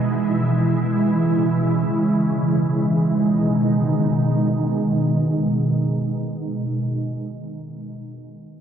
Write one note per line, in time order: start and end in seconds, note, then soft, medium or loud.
0.00 1.03 B2 medium
0.00 2.78 E3 medium
0.00 2.78 G#3 medium
0.00 2.78 E4 medium
1.07 2.80 C#3 medium
2.82 6.22 B2 medium
2.82 6.22 D#3 medium
2.82 6.21 G#3 medium
2.82 6.21 D#4 medium